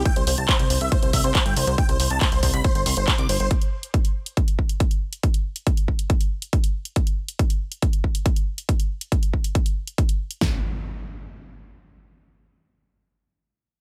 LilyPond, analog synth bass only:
\new Staff \with { instrumentName = "Analog synth bass" } { \clef bass \time 4/4 \key c \major \tempo 4 = 139 r16 c,16 c,16 c,16 r16 c,16 c,16 c,16 r16 c,16 c,16 c,16 r16 g,,16 c,16 c,16 | r16 c,16 c,16 c,16 r16 c,16 c,16 c,16 r16 g,,16 c,16 g,,16 r16 c,16 g,,16 g,,16 | r1 | r1 |
r1 | r1 | r1 | r1 | }